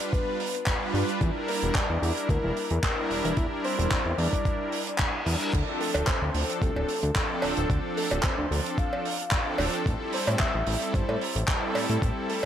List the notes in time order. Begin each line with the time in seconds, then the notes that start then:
Already playing: G3 D4 F4 B4 D5
0.00 closed hi-hat
0.12 B4, kick, closed hi-hat
0.40 open hi-hat
0.55 closed hi-hat
0.66 G3 D4 F4 B4, kick, clap, closed hi-hat
0.94 G2, open hi-hat
1.09 closed hi-hat
1.21 E2 G3 D4 E4 A#4, kick, closed hi-hat
1.48 A#4, open hi-hat
1.62 E1 G3 D4 E4 A#4, closed hi-hat
1.75 D5, kick, clap, closed hi-hat
1.90 E2
2.01 E2 G3 D4 E4 A#4, open hi-hat
2.17 closed hi-hat
2.29 D2 A#4, kick, closed hi-hat
2.44 E1
2.57 open hi-hat
2.70 E2, closed hi-hat
2.83 G3 D4 E4 A#4, kick, clap, closed hi-hat
3.10 E1, open hi-hat
3.25 E1, closed hi-hat
3.37 E2 G3 D4 E4 A#4, kick, closed hi-hat
3.64 C5, open hi-hat
3.78 E1 G3 D4 E4 A#4, closed hi-hat
3.91 kick, clap, closed hi-hat
4.06 E2
4.18 E2 G3 D4 E4 A#4 D5, open hi-hat
4.33 kick, closed hi-hat
4.45 kick, closed hi-hat, reverse cymbal
4.72 open hi-hat
4.87 closed hi-hat
4.98 G3 D4 E4 A#4, kick, clap, closed hi-hat
5.26 E2 G3 D4 E4 A#4, open hi-hat
5.41 closed hi-hat
5.53 D2 F3 C4 D4 A4, kick, closed hi-hat, crash
5.80 A4, open hi-hat
5.94 D1 F3 C4 D4 A4, closed hi-hat, cowbell
6.07 C5, kick, clap, closed hi-hat
6.22 D2
6.34 D2 F3 C4 D4 A4, open hi-hat
6.50 closed hi-hat
6.62 C2 A4, kick, closed hi-hat
6.76 D1, cowbell
6.88 open hi-hat
7.03 D2, closed hi-hat
7.15 F3 C4 D4 A4, kick, clap, closed hi-hat
7.42 D1, open hi-hat, cowbell
7.57 D1, closed hi-hat
7.69 D2 F3 C4 D4 A4, kick, closed hi-hat
7.97 A4, open hi-hat
8.11 D1 F3 C4 D4 A4, closed hi-hat, cowbell
8.23 C5, kick, clap, closed hi-hat
8.38 D2
8.51 D2 F3 C4 D4 A4, open hi-hat
8.66 closed hi-hat
8.78 F5, kick, closed hi-hat
8.93 cowbell
9.05 open hi-hat
9.20 closed hi-hat
9.31 F3 C4 D4 A4, kick, clap, closed hi-hat
9.58 D1, open hi-hat, cowbell
9.73 closed hi-hat
9.86 A1 G3 C4 E4 A4, kick, closed hi-hat
10.13 C5, open hi-hat
10.27 A2 G3 C4 E4 A4, closed hi-hat, cowbell
10.39 E5, kick, clap, closed hi-hat
10.54 A1
10.67 A1 G3 C4 E4 A4, open hi-hat
10.82 closed hi-hat
10.94 G1 C5, kick, closed hi-hat
11.09 A2, cowbell
11.21 open hi-hat
11.36 A1, closed hi-hat
11.47 G3 C4 E4 A4, kick, clap, closed hi-hat
11.75 A2, open hi-hat, cowbell
11.89 A2, closed hi-hat
12.01 A1 G3 C4 E4 A4, kick, closed hi-hat
12.29 A4, open hi-hat